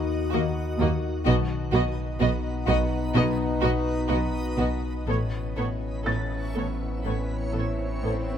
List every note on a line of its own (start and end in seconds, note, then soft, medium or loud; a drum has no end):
0.00 1.28 D#2 medium
0.00 0.33 D#3 medium
0.00 1.11 A#3 medium
0.00 3.77 D#4 medium
0.00 1.11 F#4 medium
0.00 1.23 F#4 medium
0.00 1.23 D#5 medium
0.00 0.77 B5 soft
0.31 0.41 D#2 medium
0.31 0.42 D#2 medium
0.31 0.79 D#3 medium
0.31 0.41 A#3 medium
0.31 0.39 F#4 medium
0.31 0.41 D#5 medium
0.78 0.86 D#2 medium
0.78 0.88 D#2 medium
0.78 1.30 D#3 medium
0.78 0.87 A#3 medium
0.78 0.88 F#4 medium
0.78 0.88 D#5 medium
1.25 5.11 B1 medium
1.25 1.35 B1 medium
1.25 1.33 B2 medium
1.25 1.72 B2 loud
1.25 1.34 B3 medium
1.25 5.05 B3 medium
1.25 5.05 D#4 medium
1.25 1.34 F#4 medium
1.25 5.04 F#4 medium
1.25 5.07 B4 medium
1.25 1.34 D#5 medium
1.25 5.04 D#5 medium
1.72 1.81 B1 medium
1.72 1.81 B2 medium
1.72 2.66 B2 medium
1.72 1.82 B3 medium
1.72 1.80 F#4 medium
1.72 1.82 D#5 medium
2.20 2.28 B1 medium
2.20 2.28 B2 medium
2.20 2.29 B3 medium
2.20 3.61 B3 medium
2.20 2.28 F#4 medium
2.20 2.28 D#5 medium
2.66 2.76 B1 medium
2.66 2.75 B2 medium
2.66 3.14 B2 medium
2.66 2.76 B3 medium
2.66 2.74 F#4 medium
2.66 2.75 D#5 medium
3.14 3.24 B1 medium
3.14 3.22 B2 medium
3.14 4.10 B2 loud
3.14 3.23 B3 medium
3.14 3.22 F#4 medium
3.14 3.24 D#5 medium
3.61 3.71 B1 medium
3.61 3.70 B2 medium
3.61 7.52 B3 medium
3.61 3.71 B3 medium
3.61 3.69 F#4 medium
3.61 3.71 D#5 medium
4.08 4.19 B1 medium
4.08 4.18 B2 medium
4.08 4.57 B2 medium
4.08 4.18 B3 medium
4.08 4.16 F#4 medium
4.08 4.17 D#5 medium
4.57 4.66 B1 medium
4.57 4.65 B2 medium
4.57 5.12 B2 medium
4.57 4.67 B3 medium
4.57 4.66 F#4 medium
4.57 4.68 D#5 soft
5.07 5.16 A1 medium
5.07 8.38 A1 medium
5.07 5.55 A2 medium
5.07 5.16 A2 medium
5.07 8.38 B3 medium
5.07 5.16 B3 medium
5.07 8.38 C#4 medium
5.07 8.38 E4 medium
5.07 5.15 A4 medium
5.07 8.38 B4 medium
5.07 8.38 C#5 medium
5.07 5.18 C#5 medium
5.07 swell medium
5.56 5.65 A1 medium
5.56 6.55 A2 soft
5.56 5.65 A2 soft
5.56 5.66 B3 soft
5.56 5.64 A4 soft
5.56 5.66 C#5 soft
6.04 6.14 A1 soft
6.04 6.15 A2 soft
6.04 7.52 A3 soft
6.04 6.14 B3 soft
6.04 6.12 A4 soft
6.04 6.15 C#5 soft
6.04 8.38 A6 soft
6.54 6.64 A1 soft
6.54 6.64 A2 soft
6.54 7.03 A2 soft
6.54 6.64 B3 soft
6.54 6.62 A4 soft
6.54 6.66 C#5 soft
7.04 7.14 A1 soft
7.04 7.13 A2 soft
7.04 8.02 A2 soft
7.04 7.13 B3 soft
7.04 7.12 A4 soft
7.08 7.16 C#5 soft
7.53 7.63 A1 soft
7.53 7.63 A2 soft
7.53 8.38 A3 soft
7.53 7.61 B3 soft
7.53 7.61 A4 soft
7.57 7.65 C#5 soft
8.03 8.12 A1 soft
8.03 8.38 A2 soft
8.03 8.11 A2 soft
8.03 8.11 B3 soft
8.03 8.12 A4 soft
8.03 8.14 C#5 soft